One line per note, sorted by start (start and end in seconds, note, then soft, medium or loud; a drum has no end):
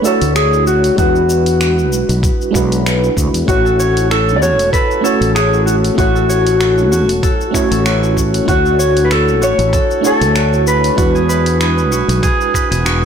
0.00 0.02 A3 medium
0.00 0.93 A3 loud
0.00 0.03 D4 medium
0.00 0.94 D4 medium
0.00 0.04 E4 medium
0.00 0.06 F#4 medium
0.00 0.07 C#5 medium
0.04 0.95 E4 medium
0.04 0.95 F#4 medium
0.04 0.35 A4 medium
0.04 0.96 C#5 loud
0.04 shaker medium
0.21 0.89 D2 medium
0.21 open hi-hat medium
0.21 shaker soft
0.36 0.67 G#4 medium
0.36 finger snap loud
0.36 open hi-hat soft
0.36 shaker soft
0.53 shaker soft
0.67 0.97 F#4 medium
0.67 shaker medium
0.84 open hi-hat medium
0.84 shaker soft
0.95 1.92 E2 loud
0.95 2.49 G#3 medium
0.95 2.50 D4 medium
0.95 2.51 E4 medium
0.95 3.13 F#4 medium
0.95 kick loud
0.95 open hi-hat soft
0.95 shaker soft
0.99 2.52 F#4 medium
0.99 2.52 B4 medium
1.16 shaker soft
1.30 shaker medium
1.46 open hi-hat medium
1.46 shaker soft
1.61 finger snap loud
1.61 open hi-hat soft
1.61 shaker soft
1.79 shaker soft
1.92 2.02 B1 loud
1.92 shaker medium
2.09 2.27 B1 medium
2.09 open hi-hat soft
2.09 shaker soft
2.23 kick loud
2.23 open hi-hat soft
2.23 shaker soft
2.41 shaker soft
2.51 3.08 B1 medium
2.51 3.43 G#3 loud
2.51 3.44 D4 loud
2.51 3.44 E4 medium
2.51 kick medium
2.55 3.45 F#4 medium
2.55 3.46 B4 loud
2.55 finger snap soft
2.55 shaker medium
2.72 open hi-hat medium
2.72 shaker soft
2.86 finger snap loud
2.86 open hi-hat soft
2.86 shaker soft
3.04 shaker soft
3.17 3.27 D2 loud
3.17 kick medium
3.17 shaker medium
3.34 3.42 E2 medium
3.34 open hi-hat medium
3.34 shaker soft
3.45 4.41 A1 medium
3.45 4.99 A3 medium
3.45 5.00 C#4 medium
3.45 5.01 E4 medium
3.45 4.41 F#4 loud
3.45 4.07 F#4 loud
3.45 kick loud
3.45 open hi-hat soft
3.49 5.01 F#4 medium
3.49 5.02 C#5 loud
3.49 shaker soft
3.65 4.10 A4 medium
3.65 shaker soft
3.79 5.03 C#5 loud
3.79 shaker medium
3.97 open hi-hat medium
3.97 shaker soft
4.10 4.72 A4 medium
4.10 4.36 A4 loud
4.10 finger snap loud
4.10 open hi-hat soft
4.10 shaker soft
4.29 shaker soft
4.36 4.42 D5 medium
4.41 4.59 E2 loud
4.41 5.34 F#4 medium
4.41 4.73 C#5 loud
4.41 shaker medium
4.59 4.77 E1 loud
4.59 open hi-hat medium
4.59 shaker soft
4.73 5.20 A4 loud
4.73 5.05 B4 loud
4.73 kick loud
4.73 open hi-hat soft
4.73 shaker soft
4.91 shaker soft
5.01 5.93 A3 loud
5.01 5.94 C#4 medium
5.01 5.94 E4 medium
5.01 5.35 A4 loud
5.01 6.29 C#5 medium
5.05 5.95 F#4 medium
5.05 5.96 C#5 loud
5.05 shaker medium
5.21 5.89 A1 medium
5.21 6.15 A4 medium
5.21 open hi-hat soft
5.21 shaker soft
5.35 5.98 F#4 medium
5.35 5.66 G#4 medium
5.35 finger snap loud
5.35 open hi-hat soft
5.35 shaker soft
5.53 shaker soft
5.66 5.75 F#4 medium
5.66 shaker medium
5.84 open hi-hat medium
5.84 shaker soft
5.95 6.92 A1 medium
5.95 7.49 A3 medium
5.95 7.50 C#4 medium
5.95 7.51 E4 medium
5.95 8.13 F#4 loud
5.95 6.91 F#4 loud
5.95 kick loud
5.95 open hi-hat soft
5.99 7.51 F#4 medium
5.99 7.52 C#5 medium
5.99 shaker soft
6.15 6.60 A4 medium
6.15 shaker soft
6.29 7.54 C#5 loud
6.29 shaker medium
6.47 open hi-hat medium
6.47 shaker soft
6.61 7.22 A4 medium
6.61 finger snap loud
6.61 open hi-hat soft
6.61 shaker soft
6.78 shaker soft
6.92 7.08 E2 loud
6.92 7.85 F#4 medium
6.92 shaker medium
7.08 7.26 E1 medium
7.08 open hi-hat medium
7.08 shaker soft
7.23 7.71 A4 loud
7.23 kick loud
7.23 open hi-hat soft
7.23 shaker soft
7.41 shaker soft
7.51 8.43 A3 loud
7.51 8.44 C#4 loud
7.51 8.44 E4 medium
7.51 8.79 C#5 medium
7.51 finger snap soft
7.51 kick medium
7.55 8.45 F#4 medium
7.55 8.46 C#5 loud
7.55 shaker medium
7.71 8.39 A1 medium
7.71 8.65 A4 medium
7.71 open hi-hat medium
7.71 shaker soft
7.86 8.47 F#4 medium
7.86 finger snap medium
7.86 open hi-hat soft
7.86 shaker soft
8.03 shaker soft
8.17 kick medium
8.17 shaker medium
8.34 open hi-hat medium
8.34 shaker soft
8.45 9.41 D2 medium
8.45 9.99 A3 medium
8.45 10.00 D4 medium
8.45 10.01 E4 medium
8.45 9.41 F#4 loud
8.45 10.01 F#4 medium
8.45 kick loud
8.45 open hi-hat soft
8.45 shaker soft
8.49 9.06 F#4 loud
8.49 10.02 C#5 medium
8.65 9.10 A4 medium
8.65 shaker soft
8.79 10.04 C#5 loud
8.79 shaker medium
8.97 open hi-hat medium
8.97 shaker soft
9.05 9.11 B4 medium
9.10 9.72 A4 medium
9.10 9.43 A4 loud
9.10 finger snap loud
9.10 open hi-hat soft
9.10 shaker soft
9.28 shaker soft
9.41 9.52 A1 loud
9.41 10.35 F#4 medium
9.41 10.06 C#5 loud
9.41 shaker medium
9.58 9.76 A1 loud
9.58 open hi-hat medium
9.58 shaker soft
9.73 10.21 A4 loud
9.73 kick loud
9.73 open hi-hat medium
9.73 shaker soft
9.91 shaker soft
10.01 10.93 A3 loud
10.01 10.94 D4 loud
10.01 10.94 E4 medium
10.01 11.96 C#5 medium
10.01 shaker medium
10.05 10.95 F#4 loud
10.05 10.64 A4 loud
10.05 10.96 C#5 loud
10.21 10.89 D2 medium
10.21 11.21 A4 medium
10.21 open hi-hat medium
10.21 shaker soft
10.36 10.97 F#4 medium
10.36 finger snap loud
10.36 open hi-hat soft
10.36 shaker soft
10.53 shaker soft
10.67 12.82 B4 loud
10.67 shaker medium
10.84 open hi-hat medium
10.84 shaker soft
10.95 11.91 E2 medium
10.95 12.49 G#3 medium
10.95 12.50 D4 medium
10.95 12.51 E4 medium
10.95 11.91 F#4 loud
10.95 kick loud
10.95 open hi-hat soft
10.95 shaker soft
10.99 12.51 F#4 medium
10.99 12.52 B4 loud
11.15 11.60 G#4 medium
11.15 shaker soft
11.29 12.54 B4 loud
11.29 shaker medium
11.46 open hi-hat medium
11.46 shaker soft
11.60 12.23 G#4 medium
11.60 finger snap loud
11.60 open hi-hat soft
11.60 shaker soft
11.78 shaker soft
11.91 12.02 B1 loud
11.91 12.85 F#4 medium
11.91 shaker medium
12.08 12.26 B1 loud
12.08 open hi-hat medium
12.08 shaker soft
12.23 12.71 G#4 loud
12.23 kick loud
12.23 open hi-hat medium
12.23 shaker soft
12.41 shaker soft
12.54 13.05 B4 medium
12.54 finger snap soft
12.54 kick medium
12.54 shaker medium
12.71 13.05 E1 medium
12.71 13.05 G#4 medium
12.71 open hi-hat medium
12.71 shaker soft
12.85 13.05 F#4 medium
12.85 finger snap loud
12.85 open hi-hat soft
12.85 shaker soft